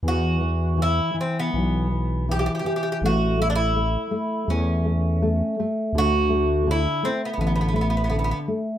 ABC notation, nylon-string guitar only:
X:1
M:4/4
L:1/8
Q:1/4=82
K:Em
V:1 name="Nylon-string guitar" clef=bass
E, E, E, E, E, E, E, E, | A, A, A, A, A, A, A, A, | D, A, D, A, D, A, D, A, |]